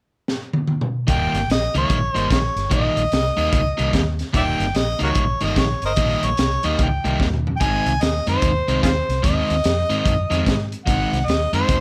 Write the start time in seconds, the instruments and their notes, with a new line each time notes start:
0.28 snare
0.53 high tom
0.67 high tom
0.81 mid tom
1.07 fingered electric bass D#1, overdriven electric guitar D#3 G3 A#3 D#4, harmonica G5, kick, closed hi-hat
1.33 fingered electric bass G1, snare, closed hi-hat
1.48 fingered electric bass A#1, harmonica D#5, snare, closed hi-hat
1.75 fingered electric bass C#2, overdriven electric guitar D#3 G3 A#3 D#4, harmonica C#5, closed hi-hat
1.90 fingered electric bass A#1, kick, closed hi-hat
2.14 fingered electric bass G1, overdriven electric guitar D#3 G3 A#3 D#4, harmonica C5, closed hi-hat
2.30 fingered electric bass A#1, harmonica C#5, kick, snare, closed hi-hat
2.56 fingered electric bass G1, snare, closed hi-hat
2.70 fingered electric bass A#1, overdriven electric guitar D#3 G3 A#3 D#4, harmonica D#5, kick, closed hi-hat
2.97 fingered electric bass A#1, closed hi-hat
3.12 fingered electric bass C2, snare, closed hi-hat
3.37 fingered electric bass D#2, overdriven electric guitar D#3 G3 A#3 D#4, closed hi-hat
3.53 fingered electric bass C#2, kick, closed hi-hat
3.77 fingered electric bass C2, overdriven electric guitar D#3 G3 A#3 D#4, closed hi-hat
3.93 fingered electric bass D#2, kick, snare, closed hi-hat
4.19 snare, closed hi-hat
4.33 fingered electric bass D#1, overdriven electric guitar D#3 G3 A#3 D#4, harmonica D5 E5 G5, kick, closed hi-hat
4.60 fingered electric bass G1, snare, closed hi-hat
4.75 fingered electric bass A#1, harmonica D#5, snare, closed hi-hat
4.99 fingered electric bass C#2, overdriven electric guitar D#3 G3 A#3 D#4, closed hi-hat
5.03 harmonica F#4 A#4 C#5
5.15 fingered electric bass A#1, kick, closed hi-hat
5.41 fingered electric bass G1, overdriven electric guitar D#3 G3 A#3 D#4, harmonica D#5, snare, closed hi-hat
5.56 fingered electric bass A#1, harmonica C#5, kick, snare, closed hi-hat
5.82 fingered electric bass G1, harmonica A#4 C5 D#5, closed hi-hat
5.96 fingered electric bass A#1, overdriven electric guitar D#3 G3 A#3 D#4, kick, closed hi-hat
6.23 fingered electric bass A#1, harmonica C#5, closed hi-hat
6.37 fingered electric bass C2, snare, closed hi-hat
6.63 fingered electric bass D#2, overdriven electric guitar D#3 G3 A#3 D#4, harmonica D#5, closed hi-hat
6.79 fingered electric bass C#2, kick, closed hi-hat
6.83 harmonica G5
7.04 fingered electric bass C2, overdriven electric guitar D#3 G3 A#3 D#4, closed hi-hat
7.20 fingered electric bass D#2, kick, snare
7.34 mid tom
7.47 floor tom
7.56 harmonica G5
7.61 fingered electric bass G#1, overdriven electric guitar D#3 G#3 C4 D#4, harmonica G#5, kick, closed hi-hat
7.86 fingered electric bass C2, closed hi-hat
8.01 fingered electric bass D#2, harmonica D#5, snare, closed hi-hat
8.27 fingered electric bass F#2, overdriven electric guitar D#3 G#3 C4 D#4, harmonica C5, closed hi-hat
8.42 fingered electric bass D#2, kick, snare, closed hi-hat
8.68 fingered electric bass C2, overdriven electric guitar D#3 G#3 C4 D#4, closed hi-hat
8.83 fingered electric bass D#2, harmonica F4 G#4 C5, kick, snare, closed hi-hat
9.09 fingered electric bass C2, snare, closed hi-hat
9.23 fingered electric bass D#2, overdriven electric guitar D#3 G#3 C4 D#4, harmonica D#5, kick, closed hi-hat
9.50 fingered electric bass D#2, snare, closed hi-hat
9.64 fingered electric bass F2, snare, closed hi-hat
9.90 fingered electric bass G#2, overdriven electric guitar D#3 G#3 C4 D#4, closed hi-hat
10.05 fingered electric bass F#2, kick, closed hi-hat
10.30 fingered electric bass F2, overdriven electric guitar D#3 G#3 C4 D#4, snare, closed hi-hat
10.46 fingered electric bass G#2, kick, snare, closed hi-hat
10.72 closed hi-hat
10.85 fingered electric bass G#1, overdriven electric guitar D#3 G#3 C4 D#4, harmonica F#5, kick, closed hi-hat
11.13 fingered electric bass C2, snare, closed hi-hat
11.26 fingered electric bass D#2, harmonica D#5, closed hi-hat
11.30 snare
11.53 fingered electric bass F#2, overdriven electric guitar D#3 G#3 C4 D#4, harmonica C5, closed hi-hat
11.69 fingered electric bass D#2, kick, closed hi-hat